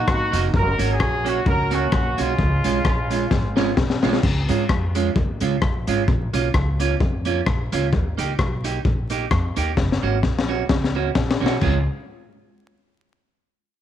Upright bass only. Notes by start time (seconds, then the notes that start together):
0.08 G#1
0.33 F1
0.54 F#1
0.79 G#1
1.00 A#1
1.46 C#2
1.92 A#1
2.18 B1
2.38 C#2
2.65 B1
2.85 A#1
3.31 G#1
3.77 B1
4.03 B1
4.23 C#2
4.49 G#2
4.69 F2
5.16 D#2
5.41 C#2
5.62 A#1
5.87 G#1
6.08 A#1
6.33 B1
6.54 C#2
7.00 F2
7.47 A#1
7.72 C#2
7.93 D#2
8.18 C#2
8.39 B1
8.85 A#1
9.31 F2
9.57 D#2
9.77 F#1
10.03 G#1
10.23 A#1
10.70 C#2
11.15 A#1
11.41 B1
11.62 C#2